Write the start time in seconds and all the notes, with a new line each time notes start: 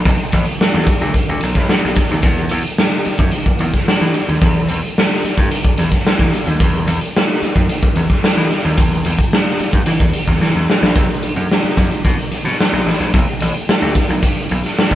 0.05 B1, kick, closed hi-hat
0.32 A1, kick, closed hi-hat
0.45 closed hi-hat
0.61 muted slap bass stroke, snare
0.74 E2
0.87 kick, closed hi-hat
1.01 D2, closed hi-hat
1.14 kick, closed hi-hat
1.29 D2
1.41 B1, closed hi-hat
1.54 B1, kick, snare, closed hi-hat
1.69 B2, snare
1.84 B1
1.95 kick, snare, closed hi-hat
2.09 D#2, closed hi-hat
2.22 E2, kick, closed hi-hat
2.37 closed hi-hat
2.49 E2, closed hi-hat
2.63 closed hi-hat
2.78 snare
3.05 muted slap bass stroke, closed hi-hat
3.18 F#2, kick, closed hi-hat
3.31 closed hi-hat
3.45 muted slap bass stroke, kick, closed hi-hat
3.59 E2, closed hi-hat
3.73 kick, snare, closed hi-hat
3.88 snare
4.00 E3, closed hi-hat
4.14 closed hi-hat
4.28 D#2, closed hi-hat
4.41 E2, kick, closed hi-hat
4.56 closed hi-hat
4.68 E2, closed hi-hat
4.83 closed hi-hat
4.98 snare
5.11 closed hi-hat
5.24 muted slap bass stroke, closed hi-hat
5.37 G2, kick, closed hi-hat
5.51 closed hi-hat
5.65 muted slap bass stroke, kick
5.78 E2, closed hi-hat
5.92 kick, snare, closed hi-hat
6.07 snare
6.19 E3, kick, closed hi-hat
6.33 closed hi-hat
6.46 D#2, closed hi-hat
6.60 E2, kick, closed hi-hat
6.87 E2, closed hi-hat
7.01 closed hi-hat
7.17 snare
7.42 muted slap bass stroke, closed hi-hat
7.56 F#2, kick, closed hi-hat
7.69 closed hi-hat
7.82 muted slap bass stroke, kick, closed hi-hat
7.96 E2, closed hi-hat
8.10 kick, snare, closed hi-hat
8.24 snare
8.36 E3, closed hi-hat
8.51 snare, closed hi-hat
8.65 D#2, closed hi-hat
8.77 E2, kick, closed hi-hat
9.05 E2, closed hi-hat
9.18 kick, closed hi-hat
9.33 snare
9.46 closed hi-hat
9.59 muted slap bass stroke, closed hi-hat
9.72 G2, kick, closed hi-hat
9.86 E3, closed hi-hat
10.00 E2, kick
10.13 closed hi-hat
10.27 E2, kick, snare, closed hi-hat
10.41 E3, snare
10.55 E2
10.70 snare
10.82 A#1, snare
10.95 B1, kick, closed hi-hat
11.23 closed hi-hat
11.36 F#2, closed hi-hat
11.52 snare
11.64 muted slap bass stroke, closed hi-hat
11.77 F#2, kick, closed hi-hat
11.91 closed hi-hat
12.05 B2, kick, closed hi-hat
12.18 closed hi-hat
12.31 muted slap bass stroke, closed hi-hat
12.44 B2, snare, closed hi-hat
12.60 snare
12.73 B1
12.86 A1, snare, open hi-hat
13.00 A#1, closed hi-hat
13.14 B1, kick, closed hi-hat
13.40 A1, closed hi-hat
13.54 closed hi-hat
13.69 muted slap bass stroke, snare
13.82 D2
13.95 kick, closed hi-hat
14.09 B1, closed hi-hat
14.23 kick, closed hi-hat
14.36 muted slap bass stroke, closed hi-hat
14.49 B1, closed hi-hat
14.63 snare, closed hi-hat
14.79 snare
14.90 A1, kick, closed hi-hat